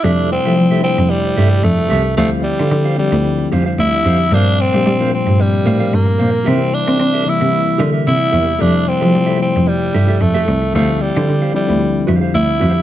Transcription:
<<
  \new Staff \with { instrumentName = "Clean electric guitar" } { \time 4/4 \key f \major \tempo 4 = 112 <g' a' e''>8 r16 <g' a' e''>16 r16 <g' a' e''>16 r4 <g' a' e''>16 r8. <g' a' e''>16 r16 | <g' c'' f''>8 r16 <g' c'' f''>16 r16 <g' c'' f''>16 r4 <g' c'' f''>16 <g' c'' f''>16 r8 <g' c'' f''>16 r16 | <bes' c'' f''>8 r16 <bes' c'' f''>16 r16 <bes' c'' f''>16 r4 <bes' c'' f''>16 <bes' c'' f''>16 r8 <bes' c'' f''>16 r16 | <g' bes' e''>8 r16 <g' bes' e''>16 r16 <g' bes' e''>16 r4 <g' bes' e''>16 <g' bes' e''>16 r8 <g' bes' e''>16 r16 |
<g' a' e''>8 r16 <g' a' e''>16 r16 <g' a' e''>16 r4 <g' a' e''>16 <g' a' e''>16 r16 <g' a' e''>16 r8 | <g' c'' f''>8 r16 <g' c'' f''>16 r16 <g' c'' f''>16 r4 <g' c'' f''>16 <g' c'' f''>16 r8 <g' c'' f''>8 | }
  \new Staff \with { instrumentName = "Tenor saxophone" } { \time 4/4 \key f \major d'8 c'4 c'8 g4 a4 | a8 g4 g4 r8 e'4 | d'8 c'4 c'8 g4 bes4 | c'8 d'4 e'4 r8 e'4 |
d'8 c'4 c'8 g4 a4 | a8 g4 g4 r8 e'4 | }
  \new Staff \with { instrumentName = "Tine electric piano" } { \clef bass \time 4/4 \key f \major <c f g a e'>8 r16 <c f g a e'>16 r16 <c f g a d' e'>4. r4 r16 | <d f g c' e'>4 r8 <d f g c' g'>16 <d f g c' e'>4. r8. | <bes, f g a c'>8 r16 <bes, f g a d'>16 r16 <bes, f g a c'>4. r4 r16 | <c e g bes ees' e'>4 r8 <c e g bes e'>16 <c e g bes e'>4. r8. |
<c f g a e'>8 r16 <c f g a e'>16 r16 <c f g a e'>4. r4 r16 | <d f g c' e'>4 r8 <d f g c' e'>16 <d f g c' e'>4. r8. | }
  \new Staff \with { instrumentName = "Cello" } { \clef bass \time 4/4 \key f \major f,8 r16 f16 f8 r16 f,8 r16 g,8 f,8 c,8 | d,8 r16 d16 d8 r16 d,8 r16 f,8 d,8 f,8 | g,8 r16 g16 g8 r16 g,8 r16 a,8 g,8 bes,8 | c8 r16 c'16 c'8 r16 c8 r16 d8 c8 e,8 |
f,8 r16 f16 f8 r16 f,8 r16 g,8 f,8 c,8 | d,8 r16 d16 d8 r16 d,8 r16 f,8 d,8 f,8 | }
>>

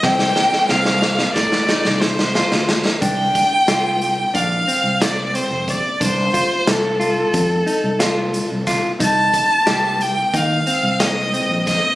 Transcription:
<<
  \new Staff \with { instrumentName = "Violin" } { \time 9/8 \key g \minor \tempo 4. = 60 g''4 f''4 d''4 c''4 r8 | g''2 f''4 d''8 c''8 d''8 | c''4 a'2. r8 | a''4. g''8 f''4 ees''4 ees''8 | }
  \new Staff \with { instrumentName = "Clean electric guitar" } { \time 9/8 \key g \minor c'4 c'4 r8 ees'4 f'4 | d'4 f'4 d'8 c'4 c'4 | d'8 f'4 f'4 ees'8 f'4 f'8 | ees'4 g'4 ees'8 c'4 c'4 | }
  \new Staff \with { instrumentName = "Fretless electric bass" } { \clef bass \time 9/8 \key g \minor c,8 r8 c,4 a,8 r16 c,4 d,8 r16 | c,8 r8 c,4 bes,,8 r16 c,4 f,,8 r16 | c,8 r8 c,4 f,8 r16 c,4 c,8 r16 | c,8 r8 c,4 ees,8 r16 c,4 bes,,8 r16 | }
  \new DrumStaff \with { instrumentName = "Drums" } \drummode { \time 9/8 <bd sn>16 sn16 sn16 sn16 sn16 sn16 sn16 sn16 <bd sn>16 sn16 sn16 sn16 sn16 sn16 sn16 sn16 sn16 sn16 | <hh bd>8 <hh bd>8 <hh sn>8 hh8 <hh bd>8 hh8 <hh sn>8 hh8 <hh bd>8 | <hh bd>8 <hh bd>8 <hh sn>8 hh8 <hh bd>8 hh8 <hh sn>8 hh8 <hh bd sn>8 | <hh bd>8 <hh bd>8 <hh sn>8 hh8 <hh bd>8 hh8 <hh sn>8 hh8 <hh bd sn>8 | }
>>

